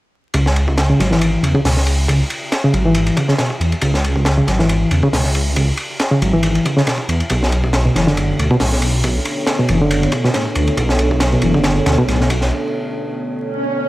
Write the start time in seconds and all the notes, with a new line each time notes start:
0.34 C#2 C#3, kick, ride
0.46 snare
0.56 ride
0.68 kick
0.78 snare, ride
0.89 C#3
0.99 G#1 F#3, snare, ride
1.11 E3, snare
1.21 ride
1.43 E2 C#3, ride
1.54 C#2 C#3, kick
1.65 C#2 B2, snare, open hi-hat
1.77 snare
1.87 ride
2.08 C#3, kick, ride
2.30 ride
2.52 snare, ride
2.64 C#3
2.74 G#1 F#3, ride
2.85 E3
2.95 ride
3.07 ride
3.17 C#3, kick, ride
3.28 C#3, snare
3.38 B2, snare, ride
3.50 kick
3.60 E2, ride
3.72 ride
3.81 C#2 C#3, kick, ride
3.94 snare
4.04 ride
4.16 kick
4.25 snare, ride
4.38 C#3
4.47 G#1 F#3, snare, ride
4.59 E3, snare
4.69 ride
4.91 E2 C#3, ride
5.03 C#2 C#3, kick
5.13 C#2 B2, snare, open hi-hat
5.24 snare
5.35 ride
5.56 C#3, kick, ride
5.77 ride
6.00 snare, ride
6.11 C#3
6.22 G#1 F#3, ride
6.33 E3
6.43 ride
6.55 ride
6.65 C#3, kick, ride
6.77 C#3, snare
6.87 B2, snare, ride
6.98 kick
7.08 E2, ride
7.20 ride
7.30 B1 B2 B3 D4 A4 C#5, kick, ride
7.43 snare
7.52 ride
7.64 kick
7.73 snare, ride
7.85 B2
7.95 F#1 E3, snare, ride
8.07 D3, snare
8.17 ride
8.39 D2 B2, ride
8.51 B1 B2, kick
8.60 B1 A2, snare, open hi-hat
8.72 snare
8.82 ride
9.04 B2, kick, ride
9.25 ride
9.47 snare, ride
9.59 B2
9.69 F#1 E3, ride
9.81 D3
9.91 ride
10.03 ride
10.12 B2, kick, ride
10.24 B2, snare
10.34 A2, snare, ride
10.45 kick
10.55 D2, ride
10.68 ride
10.77 B1 B2, kick, ride
10.89 snare
10.99 ride
11.11 kick
11.20 snare, ride
11.33 B2
11.42 F#1 E3, ride
11.54 D3, kick
11.64 snare, ride
11.86 D2 B2, snare, ride
11.98 B1 B2
12.08 B1 A2, snare, ride
12.21 snare
12.30 kick, ride
12.41 snare
13.39 swell